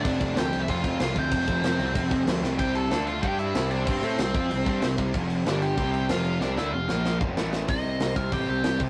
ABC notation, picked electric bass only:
X:1
M:4/4
L:1/8
Q:1/4=188
K:C
V:1 name="Picked electric bass" clef=bass
F,,, F,,, D,, C,, F,, F,, C,, D,, | F,,, F,,, F,,, C,, F,,, F,, D,, C,, | C,,2 D,,2 G,,2 C,,2 | G,, A,, C,, F,, C,, G,, C,, C,, |
F,,,2 G,,,2 C,,2 F,,,2 | C,, D,, F,,, _B,,,2 F,,, A,,,2 | C,, C,, C,, C,, A,,, C,, C,, C, |]